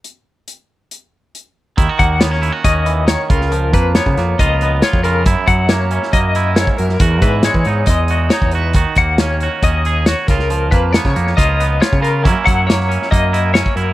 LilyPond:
<<
  \new Staff \with { instrumentName = "Clean electric guitar" } { \time 4/4 \key dis \phrygian \tempo 4 = 138 r1 | r8 fis''8 cis''4 dis''4 cis''8 ais'8~ | ais'8 b'8 cis''4 dis''4 cis''8 ais'8 | r8 fis''8 cis''4 dis''4 cis''8 ais'8~ |
ais'8 b'8 cis''4 dis''4 cis''8 b'8 | r8 fis''8 cis''4 dis''4 cis''8 ais'8~ | ais'8 b'8 cis''4 dis''4 cis''8 ais'8 | r8 fis''8 cis''4 dis''4 cis''8 ais'8 | }
  \new Staff \with { instrumentName = "Clean electric guitar" } { \time 4/4 \key dis \phrygian << { r1 | e'16 fis'8. b16 cis'16 e'16 fis'16 cis'4. eis'8~ | eis'8 ais8 b8 ais8 eis'8 b8 eis'8 eis'8 | e'4 ais8 cis'8 ais8 e'4. |
fis'4 gis8 dis'8 gis8 fis'8 dis'8 fis'8 | fis'4 cis'8 fis'8 cis'8 gis'8 fis'8 eis'8~ | eis'8 ais8 b8 ais8 eis'8 b8 eis'8 eis'8 | <fis ais cis' e'>4 ais8 cis'8 ais8 e'8 cis'8 e'8 | } \\ { r1 | dis8 ais2 e8 dis8 cis8 | eis2.~ eis8 cis8 | fis,8 fis2~ fis8 gis,8 fis,8 |
e,8 e2.~ e8 | dis8 ais2. cis8 | eis2.~ eis8 cis8 | fis,8 fis2.~ fis8 | } >> }
  \new Staff \with { instrumentName = "Picked electric bass" } { \clef bass \time 4/4 \key dis \phrygian r1 | dis,16 r16 dis,4. dis,4. cis,8~ | cis,8 eis,8. cis16 eis,8 cis,4~ cis,16 eis,8. | fis,16 r16 fis,4. fis,4. fis,8 |
e,8 gis,8. e16 gis,8 e,4~ e,16 e,8. | dis,16 r16 dis,4. dis,4. cis,8~ | cis,8 eis,8. cis16 eis,8 cis,4~ cis,16 cis8. | fis,16 r16 fis,4. fis,4. fis,8 | }
  \new DrumStaff \with { instrumentName = "Drums" } \drummode { \time 4/4 hh4 hh4 hh4 hh4 | <hh bd>8 <hh bd>8 <hh sn>16 sn16 hh8 <hh bd>8 hh8 <hh sn>8 <hh bd>16 sn16 | hh8 <hh bd>8 <hh sn>16 bd16 <hh sn>8 <hh bd>8 hh8 <hh sn>16 bd16 hh8 | <hh bd>8 <hh bd>8 <hh sn>8 hh16 sn16 <hh bd>8 hh8 <hh sn>16 bd16 hh16 sn16 |
<hh bd>8 <hh bd>8 <hh sn>16 bd16 hh8 <hh bd>8 hh8 <hh sn>16 bd16 hh8 | <hh bd>8 <hh bd>8 <hh sn>8 hh8 <hh bd>8 hh8 <hh sn>8 <hh bd sn>16 sn16 | hh8 <hh bd>8 <hh sn>16 <bd sn>16 hh16 sn16 <hh bd>8 hh8 <hh sn>16 bd16 hh8 | <hh bd>8 <hh bd>8 <hh sn>16 sn16 hh16 sn16 <hh bd>8 hh8 <hh sn>16 bd16 hh8 | }
>>